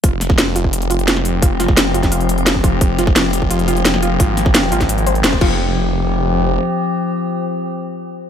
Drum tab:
CC |----------------|----------------|----------------|--------------x-|
HH |x-x-x-x-xxxxx-x-|x-x-x-xxxxxxx-x-|x-x-x-x-xxxxx-x-|x-x-x-xxxxxxx---|
SD |--ooo-------oo--|--ooo--o----o---|--ooo-------oo--|--ooo--o----o---|
BD |o--o---o--------|o--o---o-----oo-|o--o---o--------|o--o---o-----oo-|

CC |----------------|----------------|
HH |----------------|----------------|
SD |----------------|----------------|
BD |----------------|----------------|